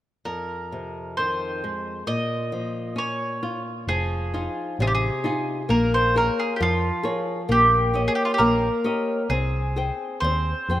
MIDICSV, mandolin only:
0, 0, Header, 1, 2, 480
1, 0, Start_track
1, 0, Key_signature, -4, "minor"
1, 0, Tempo, 911854
1, 126, Time_signature, 2, 2, 24, 8
1, 3004, Tempo, 899550
1, 4924, Tempo, 925926
1, 5699, End_track
2, 0, Start_track
2, 0, Title_t, "Mandolin"
2, 0, Program_c, 0, 25
2, 133, Note_on_c, 0, 70, 45
2, 614, Note_off_c, 0, 70, 0
2, 616, Note_on_c, 0, 72, 59
2, 1066, Note_off_c, 0, 72, 0
2, 1091, Note_on_c, 0, 75, 77
2, 1568, Note_off_c, 0, 75, 0
2, 1570, Note_on_c, 0, 73, 60
2, 1904, Note_off_c, 0, 73, 0
2, 2046, Note_on_c, 0, 68, 66
2, 2505, Note_off_c, 0, 68, 0
2, 2536, Note_on_c, 0, 68, 66
2, 2564, Note_off_c, 0, 68, 0
2, 2566, Note_on_c, 0, 67, 56
2, 2599, Note_off_c, 0, 67, 0
2, 2604, Note_on_c, 0, 68, 61
2, 3001, Note_on_c, 0, 70, 66
2, 3018, Note_off_c, 0, 68, 0
2, 3127, Note_off_c, 0, 70, 0
2, 3130, Note_on_c, 0, 72, 69
2, 3251, Note_off_c, 0, 72, 0
2, 3253, Note_on_c, 0, 70, 68
2, 3371, Note_on_c, 0, 68, 55
2, 3373, Note_off_c, 0, 70, 0
2, 3446, Note_off_c, 0, 68, 0
2, 3461, Note_on_c, 0, 67, 46
2, 3491, Note_off_c, 0, 67, 0
2, 3494, Note_on_c, 0, 65, 68
2, 3827, Note_off_c, 0, 65, 0
2, 3970, Note_on_c, 0, 67, 71
2, 4235, Note_off_c, 0, 67, 0
2, 4269, Note_on_c, 0, 68, 64
2, 4307, Note_off_c, 0, 68, 0
2, 4309, Note_on_c, 0, 67, 56
2, 4351, Note_off_c, 0, 67, 0
2, 4362, Note_on_c, 0, 65, 56
2, 4401, Note_off_c, 0, 65, 0
2, 4409, Note_on_c, 0, 67, 58
2, 4432, Note_on_c, 0, 70, 66
2, 4448, Note_off_c, 0, 67, 0
2, 4920, Note_on_c, 0, 68, 65
2, 4933, Note_off_c, 0, 70, 0
2, 5379, Note_off_c, 0, 68, 0
2, 5390, Note_on_c, 0, 72, 75
2, 5699, Note_off_c, 0, 72, 0
2, 5699, End_track
0, 0, End_of_file